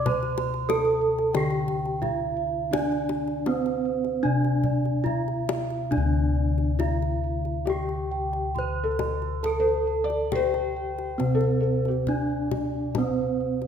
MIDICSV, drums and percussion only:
0, 0, Header, 1, 2, 480
1, 0, Start_track
1, 0, Tempo, 623053
1, 52, Time_signature, 4, 2, 24, 8
1, 533, Tempo, 663717
1, 1493, Tempo, 722892
1, 2453, Tempo, 776197
1, 2933, Tempo, 836820
1, 3893, Tempo, 881057
1, 8119, End_track
2, 0, Start_track
2, 0, Title_t, "Kendang"
2, 46, Note_on_c, 9, 63, 60
2, 46, Note_on_c, 9, 64, 88
2, 123, Note_off_c, 9, 63, 0
2, 123, Note_off_c, 9, 64, 0
2, 174, Note_on_c, 9, 62, 27
2, 251, Note_off_c, 9, 62, 0
2, 290, Note_on_c, 9, 63, 47
2, 367, Note_off_c, 9, 63, 0
2, 415, Note_on_c, 9, 62, 26
2, 492, Note_off_c, 9, 62, 0
2, 537, Note_on_c, 9, 63, 66
2, 609, Note_off_c, 9, 63, 0
2, 647, Note_on_c, 9, 62, 22
2, 720, Note_off_c, 9, 62, 0
2, 890, Note_on_c, 9, 62, 25
2, 962, Note_off_c, 9, 62, 0
2, 1006, Note_on_c, 9, 63, 60
2, 1078, Note_off_c, 9, 63, 0
2, 1121, Note_on_c, 9, 62, 21
2, 1193, Note_off_c, 9, 62, 0
2, 1247, Note_on_c, 9, 64, 58
2, 1320, Note_off_c, 9, 64, 0
2, 1375, Note_on_c, 9, 62, 22
2, 1447, Note_off_c, 9, 62, 0
2, 1496, Note_on_c, 9, 64, 70
2, 1563, Note_off_c, 9, 64, 0
2, 1968, Note_on_c, 9, 63, 62
2, 1968, Note_on_c, 9, 64, 70
2, 2034, Note_off_c, 9, 63, 0
2, 2034, Note_off_c, 9, 64, 0
2, 2092, Note_on_c, 9, 62, 21
2, 2158, Note_off_c, 9, 62, 0
2, 2205, Note_on_c, 9, 63, 50
2, 2272, Note_off_c, 9, 63, 0
2, 2327, Note_on_c, 9, 62, 22
2, 2394, Note_off_c, 9, 62, 0
2, 2451, Note_on_c, 9, 63, 61
2, 2513, Note_off_c, 9, 63, 0
2, 2572, Note_on_c, 9, 62, 24
2, 2634, Note_off_c, 9, 62, 0
2, 2811, Note_on_c, 9, 62, 20
2, 2872, Note_off_c, 9, 62, 0
2, 3050, Note_on_c, 9, 62, 21
2, 3107, Note_off_c, 9, 62, 0
2, 3159, Note_on_c, 9, 64, 64
2, 3217, Note_off_c, 9, 64, 0
2, 3284, Note_on_c, 9, 62, 21
2, 3342, Note_off_c, 9, 62, 0
2, 3402, Note_on_c, 9, 64, 67
2, 3459, Note_off_c, 9, 64, 0
2, 3529, Note_on_c, 9, 62, 20
2, 3586, Note_off_c, 9, 62, 0
2, 3649, Note_on_c, 9, 63, 63
2, 3707, Note_off_c, 9, 63, 0
2, 3772, Note_on_c, 9, 62, 20
2, 3830, Note_off_c, 9, 62, 0
2, 3895, Note_on_c, 9, 63, 45
2, 3895, Note_on_c, 9, 64, 66
2, 3949, Note_off_c, 9, 63, 0
2, 3949, Note_off_c, 9, 64, 0
2, 4256, Note_on_c, 9, 62, 19
2, 4310, Note_off_c, 9, 62, 0
2, 4373, Note_on_c, 9, 63, 53
2, 4373, Note_on_c, 9, 64, 60
2, 4428, Note_off_c, 9, 63, 0
2, 4428, Note_off_c, 9, 64, 0
2, 4497, Note_on_c, 9, 62, 22
2, 4551, Note_off_c, 9, 62, 0
2, 4730, Note_on_c, 9, 62, 17
2, 4784, Note_off_c, 9, 62, 0
2, 4850, Note_on_c, 9, 63, 53
2, 4904, Note_off_c, 9, 63, 0
2, 4968, Note_on_c, 9, 62, 21
2, 5023, Note_off_c, 9, 62, 0
2, 5209, Note_on_c, 9, 62, 24
2, 5264, Note_off_c, 9, 62, 0
2, 5332, Note_on_c, 9, 64, 58
2, 5387, Note_off_c, 9, 64, 0
2, 5569, Note_on_c, 9, 63, 50
2, 5569, Note_on_c, 9, 64, 53
2, 5624, Note_off_c, 9, 63, 0
2, 5624, Note_off_c, 9, 64, 0
2, 5693, Note_on_c, 9, 62, 21
2, 5747, Note_off_c, 9, 62, 0
2, 5814, Note_on_c, 9, 64, 71
2, 5868, Note_off_c, 9, 64, 0
2, 6172, Note_on_c, 9, 62, 24
2, 6226, Note_off_c, 9, 62, 0
2, 6292, Note_on_c, 9, 63, 60
2, 6292, Note_on_c, 9, 64, 57
2, 6347, Note_off_c, 9, 63, 0
2, 6347, Note_off_c, 9, 64, 0
2, 6413, Note_on_c, 9, 62, 28
2, 6467, Note_off_c, 9, 62, 0
2, 6655, Note_on_c, 9, 62, 25
2, 6710, Note_off_c, 9, 62, 0
2, 6771, Note_on_c, 9, 63, 54
2, 6825, Note_off_c, 9, 63, 0
2, 6885, Note_on_c, 9, 62, 23
2, 6940, Note_off_c, 9, 62, 0
2, 7127, Note_on_c, 9, 62, 21
2, 7182, Note_off_c, 9, 62, 0
2, 7246, Note_on_c, 9, 64, 69
2, 7300, Note_off_c, 9, 64, 0
2, 7488, Note_on_c, 9, 63, 57
2, 7488, Note_on_c, 9, 64, 60
2, 7543, Note_off_c, 9, 63, 0
2, 7543, Note_off_c, 9, 64, 0
2, 7725, Note_on_c, 9, 63, 59
2, 7725, Note_on_c, 9, 64, 78
2, 7779, Note_off_c, 9, 63, 0
2, 7779, Note_off_c, 9, 64, 0
2, 8089, Note_on_c, 9, 62, 24
2, 8119, Note_off_c, 9, 62, 0
2, 8119, End_track
0, 0, End_of_file